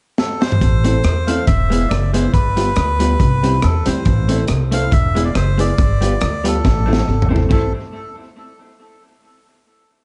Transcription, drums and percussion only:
0.18 snare medium
0.42 snare medium
0.52 mid tom medium
0.61 kick loud
0.61 closed hi-hat medium
0.84 closed hi-hat medium
1.04 cross-stick medium
1.04 closed hi-hat medium
1.28 closed hi-hat medium
1.47 kick loud
1.47 closed hi-hat medium
1.72 closed hi-hat medium
1.91 cross-stick loud
1.91 closed hi-hat medium
2.14 closed hi-hat medium
2.34 kick loud
2.34 closed hi-hat medium
2.57 closed hi-hat medium
2.76 cross-stick loud
2.76 closed hi-hat medium
3.00 closed hi-hat medium
3.20 kick loud
3.20 closed hi-hat medium
3.44 closed hi-hat medium
3.62 cross-stick loud
3.62 closed hi-hat medium
3.86 closed hi-hat medium
4.05 kick medium
4.05 closed hi-hat medium
4.29 closed hi-hat medium
4.47 cross-stick medium
4.47 closed hi-hat medium
4.72 closed hi-hat loud
4.92 kick loud
4.92 closed hi-hat medium
5.16 closed hi-hat medium
5.35 cross-stick loud
5.35 closed hi-hat medium
5.59 closed hi-hat medium
5.78 kick loud
5.78 closed hi-hat medium
6.02 closed hi-hat medium
6.21 cross-stick loud
6.21 closed hi-hat medium
6.45 closed hi-hat loud
6.65 kick loud
6.65 snare medium
6.93 snare medium
7.22 floor tom medium
7.36 floor tom medium
7.51 kick medium
7.51 crash medium

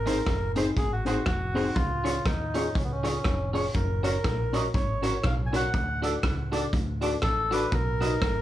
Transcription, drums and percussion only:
0.07 closed hi-hat medium
0.26 kick loud
0.26 cross-stick loud
0.26 closed hi-hat medium
0.56 closed hi-hat medium
0.77 kick loud
0.77 closed hi-hat medium
1.06 closed hi-hat medium
1.26 kick loud
1.26 cross-stick loud
1.26 closed hi-hat medium
1.56 open hi-hat soft
1.76 kick loud
1.76 closed hi-hat medium
2.06 closed hi-hat medium
2.26 kick loud
2.26 cross-stick loud
2.26 closed hi-hat medium
2.54 closed hi-hat medium
2.75 kick loud
2.75 closed hi-hat medium
3.05 closed hi-hat medium
3.24 kick loud
3.24 cross-stick medium
3.24 closed hi-hat medium
3.55 open hi-hat medium
3.74 kick loud
3.74 closed hi-hat medium
4.04 closed hi-hat loud
4.24 kick loud
4.24 cross-stick loud
4.24 closed hi-hat medium
4.54 closed hi-hat medium
4.74 kick loud
4.74 closed hi-hat medium
5.03 closed hi-hat medium
5.24 kick loud
5.24 cross-stick loud
5.24 closed hi-hat medium
5.54 closed hi-hat medium
5.74 kick loud
5.74 closed hi-hat medium
6.03 closed hi-hat medium
6.23 kick loud
6.23 cross-stick loud
6.23 closed hi-hat medium
6.53 closed hi-hat medium
6.73 kick loud
6.73 closed hi-hat medium
7.02 closed hi-hat medium
7.22 kick loud
7.22 cross-stick loud
7.22 closed hi-hat medium
7.52 closed hi-hat medium
7.72 kick loud
7.72 closed hi-hat medium
8.02 closed hi-hat loud
8.22 kick loud
8.22 cross-stick loud
8.22 closed hi-hat medium

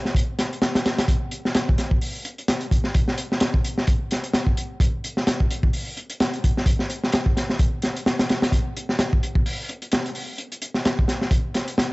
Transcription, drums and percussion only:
0.05 snare soft
0.15 kick medium
0.15 closed hi-hat medium
0.39 snare medium
0.39 closed hi-hat medium
0.53 closed hi-hat soft
0.62 snare loud
0.62 closed hi-hat medium
0.75 snare loud
0.75 closed hi-hat medium
0.86 snare medium
0.86 closed hi-hat medium
0.98 snare loud
0.98 closed hi-hat medium
1.08 kick loud
1.08 closed hi-hat medium
1.31 closed hi-hat medium
1.45 snare soft
1.55 snare loud
1.55 closed hi-hat medium
1.69 kick loud
1.78 snare soft
1.78 closed hi-hat medium
1.91 kick medium
2.02 open hi-hat medium
2.25 closed hi-hat medium
2.38 closed hi-hat soft
2.48 snare loud
2.48 closed hi-hat medium
2.61 closed hi-hat soft
2.71 kick loud
2.71 closed hi-hat medium
2.84 snare soft
2.94 kick loud
2.94 closed hi-hat medium
3.08 snare soft
3.18 closed hi-hat medium
3.32 snare medium
3.40 snare loud
3.40 closed hi-hat medium
3.54 kick medium
3.64 closed hi-hat medium
3.78 snare medium
3.87 kick loud
3.87 closed hi-hat medium
4.11 snare soft
4.11 closed hi-hat medium
4.24 closed hi-hat soft
4.34 snare loud
4.34 closed hi-hat medium
4.47 kick medium
4.57 closed hi-hat medium
4.80 kick loud
4.80 closed hi-hat medium
5.04 closed hi-hat medium
5.17 snare soft
5.27 snare loud
5.27 closed hi-hat medium
5.40 kick medium
5.51 closed hi-hat medium
5.63 kick loud
5.73 open hi-hat medium
5.97 closed hi-hat medium
6.10 closed hi-hat soft
6.20 snare loud
6.20 closed hi-hat medium
6.34 closed hi-hat soft
6.44 kick loud
6.44 closed hi-hat medium
6.57 snare soft
6.66 kick loud
6.66 closed hi-hat medium
6.79 snare soft
6.90 closed hi-hat medium
7.04 snare soft
7.12 snare loud
7.12 closed hi-hat medium
7.26 kick loud
7.37 snare medium
7.37 closed hi-hat medium
7.50 snare soft
7.59 kick loud
7.59 closed hi-hat medium
7.82 snare medium
7.82 closed hi-hat medium
7.96 closed hi-hat soft
8.06 snare loud
8.06 closed hi-hat medium
8.19 snare loud
8.19 closed hi-hat medium
8.29 snare loud
8.29 closed hi-hat medium
8.42 snare loud
8.42 closed hi-hat medium
8.52 kick loud
8.52 closed hi-hat medium
8.77 closed hi-hat medium
8.89 snare medium
8.99 snare loud
8.99 closed hi-hat loud
9.13 kick loud
9.23 closed hi-hat medium
9.35 kick loud
9.46 open hi-hat medium
9.69 closed hi-hat medium
9.82 closed hi-hat soft
9.92 snare loud
9.92 closed hi-hat medium
10.06 closed hi-hat soft
10.15 open hi-hat medium
10.38 closed hi-hat medium
10.52 closed hi-hat soft
10.62 closed hi-hat medium
10.74 snare soft
10.85 snare loud
10.85 closed hi-hat loud
10.99 kick medium
11.08 snare medium
11.08 closed hi-hat medium
11.22 snare soft
11.31 kick loud
11.31 closed hi-hat medium
11.54 snare soft
11.54 closed hi-hat medium
11.68 closed hi-hat soft
11.78 snare loud
11.78 closed hi-hat medium

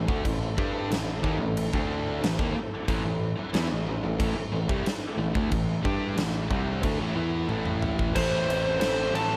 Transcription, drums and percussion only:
0.08 kick loud
0.25 kick loud
0.25 crash medium
0.58 kick loud
0.92 snare loud
0.92 crash medium
1.24 kick loud
1.57 crash medium
1.73 kick loud
2.24 snare loud
2.24 crash medium
2.39 kick loud
2.88 kick loud
2.88 crash medium
3.54 snare loud
3.54 crash medium
4.20 kick loud
4.20 crash medium
4.69 kick loud
4.86 snare loud
4.86 crash medium
5.35 kick loud
5.52 kick loud
5.52 crash medium
5.85 kick loud
6.18 snare loud
6.18 crash medium
6.51 kick loud
6.83 kick loud
6.83 crash medium
7.49 high tom medium
7.66 mid tom medium
7.82 mid tom medium
7.99 kick medium
8.16 kick loud
8.16 crash loud
8.16 crash medium
8.50 crash medium
8.81 snare loud
8.81 crash medium
9.15 crash medium

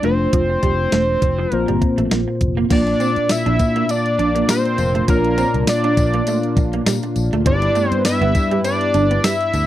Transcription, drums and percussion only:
0.03 closed hi-hat medium
0.33 kick loud
0.33 closed hi-hat loud
0.63 kick medium
0.63 closed hi-hat medium
0.92 snare loud
0.92 closed hi-hat medium
1.22 kick medium
1.22 closed hi-hat medium
1.52 closed hi-hat medium
1.68 closed hi-hat soft
1.82 kick medium
1.82 closed hi-hat medium
1.98 closed hi-hat medium
2.11 snare loud
2.11 closed hi-hat medium
2.41 kick medium
2.41 closed hi-hat medium
2.70 kick loud
2.70 closed hi-hat medium
2.70 crash medium
2.70 tambourine soft
2.87 closed hi-hat soft
3.00 closed hi-hat medium
3.00 tambourine soft
3.16 closed hi-hat soft
3.29 snare loud
3.29 closed hi-hat medium
3.29 tambourine medium
3.46 closed hi-hat medium
3.59 kick medium
3.59 closed hi-hat medium
3.59 tambourine soft
3.76 closed hi-hat medium
3.89 closed hi-hat medium
3.89 tambourine soft
4.06 closed hi-hat soft
4.19 closed hi-hat medium
4.36 closed hi-hat medium
4.49 snare loud
4.49 closed hi-hat medium
4.49 tambourine medium
4.65 closed hi-hat soft
4.78 closed hi-hat medium
4.78 tambourine soft
4.95 closed hi-hat soft
5.08 kick loud
5.08 closed hi-hat loud
5.08 tambourine soft
5.25 closed hi-hat soft
5.38 closed hi-hat medium
5.38 tambourine medium
5.54 closed hi-hat medium
5.67 snare loud
5.67 closed hi-hat medium
5.67 tambourine medium
5.84 closed hi-hat soft
5.97 kick medium
5.97 closed hi-hat medium
5.97 tambourine soft
6.14 closed hi-hat medium
6.27 closed hi-hat medium
6.27 tambourine soft
6.43 closed hi-hat soft
6.57 kick loud
6.57 closed hi-hat medium
6.57 tambourine soft
6.73 closed hi-hat medium
6.86 snare loud
6.86 closed hi-hat medium
6.86 tambourine medium
7.03 closed hi-hat soft
7.16 closed hi-hat medium
7.16 tambourine soft
7.33 closed hi-hat soft
7.46 kick loud
7.46 closed hi-hat medium
7.62 closed hi-hat medium
7.75 closed hi-hat medium
7.75 tambourine medium
7.92 closed hi-hat medium
8.05 snare loud
8.05 closed hi-hat medium
8.05 tambourine medium
8.22 closed hi-hat soft
8.35 kick medium
8.35 closed hi-hat medium
8.35 tambourine soft
8.51 closed hi-hat medium
8.64 closed hi-hat medium
8.64 tambourine medium
8.81 closed hi-hat soft
8.94 closed hi-hat medium
8.94 tambourine soft
9.11 closed hi-hat medium
9.24 snare loud
9.24 closed hi-hat medium
9.24 tambourine medium
9.41 closed hi-hat soft
9.54 closed hi-hat medium
9.54 tambourine soft

